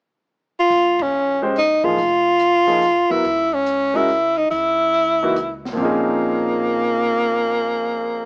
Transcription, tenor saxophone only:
0.60 F4
1.02 C#4
1.58 D#4
1.85 F4
3.11 E4
3.54 C#4
3.96 E4
4.37 D#4
4.51 E4
5.77 A#3

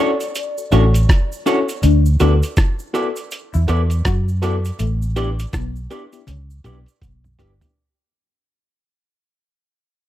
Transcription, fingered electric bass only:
0.73 A1
1.84 D2
2.21 D2
3.55 E2
3.69 E2
4.06 F#2
4.80 A1
5.54 B1
6.28 C#2
6.65 B1
7.02 B1
7.40 G1

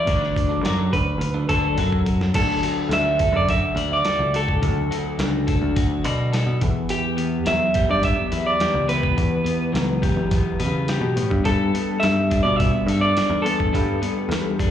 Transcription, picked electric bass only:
0.06 D2
0.63 F#2
0.93 D2
1.18 D2
1.49 D2
1.77 F#2
2.34 D2
2.89 D2
3.32 F#2
3.75 D2
4.19 C#2
4.62 D2
5.19 C#2
5.62 D2
6.05 B2
6.46 B2
6.62 E2
7.47 E2
7.90 G2
8.32 E2
8.74 C#2
9.17 E2
9.73 C#2
10.16 E2
10.60 C#3
11.01 B2
11.16 A2
11.30 G2
11.45 G2
12.03 G2
12.44 B2
12.87 G2
13.30 E2
13.74 G2
14.29 E2

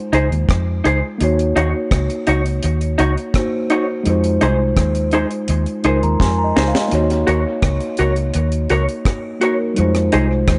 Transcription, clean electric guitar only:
0.13 D#4 G#4 C5
0.84 D#4 G#4 C5
1.56 D#4 F#4 C#5
2.27 D#4 F#4 C#5
2.98 D#4 F#4 C#5
3.70 D#4 F#4 C#5
4.41 D#4 G#4 C5
5.13 D#4 G#4 C5
5.85 D#4 G#4 C5
6.56 D#4 G#4 C5
7.27 F#4 A#4 C#5
7.99 F#4 A#4 C#5
8.70 F#4 A#4 C#5
9.41 F#4 A#4 C#5
10.13 D#4 G#4 C5

